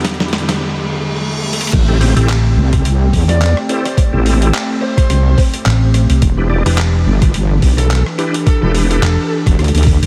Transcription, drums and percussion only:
0.01 snare, closed hi-hat
0.05 kick, closed hi-hat
0.14 closed hi-hat
0.20 snare, closed hi-hat
0.28 closed hi-hat
0.33 snare
0.38 closed hi-hat
0.49 snare, closed hi-hat
1.53 closed hi-hat
1.61 closed hi-hat
1.67 closed hi-hat
1.73 kick, closed hi-hat, crash
2.01 open hi-hat
2.17 closed hi-hat
2.29 clap, closed hi-hat
2.73 kick, cross-stick, closed hi-hat
2.85 closed hi-hat
3.13 kick, open hi-hat
3.29 closed hi-hat
3.41 clap, closed hi-hat
3.57 cross-stick
3.69 closed hi-hat
3.85 cross-stick, closed hi-hat
3.97 kick, closed hi-hat
4.26 open hi-hat
4.42 closed hi-hat
4.54 clap, closed hi-hat
4.97 kick, cross-stick, closed hi-hat
5.10 cross-stick, closed hi-hat
5.38 kick, open hi-hat
5.54 closed hi-hat
5.66 clap, closed hi-hat
5.94 cross-stick, closed hi-hat
6.10 closed hi-hat
6.22 kick, closed hi-hat
6.66 closed hi-hat, open hi-hat
6.78 clap, closed hi-hat
7.22 kick, cross-stick, closed hi-hat
7.34 closed hi-hat
7.62 kick, open hi-hat
7.78 closed hi-hat
7.91 clap, closed hi-hat
8.06 cross-stick
8.19 cross-stick, closed hi-hat
8.34 closed hi-hat
8.46 kick, closed hi-hat
8.75 open hi-hat
8.91 closed hi-hat
9.03 clap, closed hi-hat
9.46 kick, cross-stick, closed hi-hat
9.59 cross-stick, closed hi-hat
9.64 closed hi-hat
9.68 closed hi-hat
9.75 closed hi-hat
9.78 closed hi-hat
9.83 kick, closed hi-hat, open hi-hat
10.03 closed hi-hat

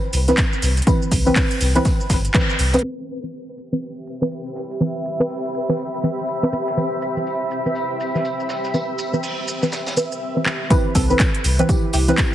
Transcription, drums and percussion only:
0.13 open hi-hat, tambourine, shaker
0.28 snare, closed hi-hat, shaker
0.37 kick, snare, clap, closed hi-hat, tambourine, shaker
0.53 shaker
0.62 snare, open hi-hat, tambourine, shaker
0.77 snare, closed hi-hat, shaker
0.82 closed hi-hat
0.87 kick, closed hi-hat, tambourine, shaker
1.02 shaker
1.11 kick, open hi-hat, tambourine, shaker
1.27 shaker
1.36 kick, snare, clap, closed hi-hat, open hi-hat, shaker
1.51 closed hi-hat, shaker
1.61 open hi-hat, tambourine, shaker
1.75 snare, closed hi-hat, shaker
1.85 kick, snare, closed hi-hat, tambourine, shaker
2.00 shaker
2.10 kick, snare, open hi-hat, tambourine, shaker
2.25 closed hi-hat, shaker
2.34 kick, clap, closed hi-hat, shaker
2.50 shaker
2.59 snare, open hi-hat, tambourine, shaker
2.73 snare, closed hi-hat, tambourine, shaker
2.79 closed hi-hat
3.08 shaker
3.23 shaker
3.32 tambourine, shaker
3.57 tambourine, shaker
3.73 shaker
3.82 tambourine, shaker
4.06 tambourine, shaker
4.21 snare, shaker
4.31 tambourine, shaker
4.46 shaker
4.55 snare, tambourine, shaker
4.70 snare, shaker
4.81 tambourine, shaker
5.05 tambourine, shaker
5.20 shaker
5.29 open hi-hat, shaker
5.54 tambourine, shaker
5.69 snare, shaker
5.78 tambourine, shaker
5.94 shaker
6.03 tambourine, shaker
6.18 shaker
6.27 tambourine, shaker
6.42 closed hi-hat, shaker
6.52 tambourine, shaker
6.67 snare, shaker
6.77 tambourine, shaker
7.01 tambourine, shaker
7.17 shaker
7.26 tambourine, shaker
7.51 tambourine, shaker
7.66 shaker
7.75 tambourine, shaker
8.00 tambourine, shaker
8.15 snare, shaker
8.25 tambourine, shaker
8.40 shaker
8.49 snare, tambourine, shaker
8.64 snare, shaker
8.74 tambourine, shaker
8.98 tambourine, shaker
9.14 shaker
9.23 open hi-hat, shaker
9.48 tambourine, shaker
9.62 snare, shaker
9.72 snare, tambourine, shaker
9.86 snare, tambourine, shaker
9.97 tambourine, shaker
10.12 shaker
10.46 clap
10.70 kick, closed hi-hat, tambourine, shaker
10.95 kick, open hi-hat, tambourine, shaker
11.10 shaker
11.19 kick, snare, clap, closed hi-hat, tambourine, shaker
11.35 closed hi-hat
11.44 open hi-hat, tambourine, shaker
11.59 closed hi-hat, shaker
11.69 kick, closed hi-hat, tambourine, shaker
11.93 open hi-hat, tambourine, shaker
12.08 snare, closed hi-hat, shaker
12.17 kick, snare, clap, closed hi-hat, tambourine, shaker

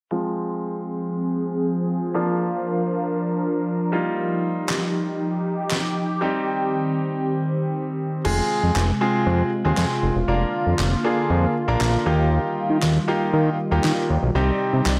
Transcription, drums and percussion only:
4.69 snare, clap
5.71 snare, clap
8.25 crash
8.76 snare, clap
9.78 snare, clap
10.79 snare, clap
11.81 snare, clap
12.83 snare, clap
13.84 snare, clap
14.86 snare, clap

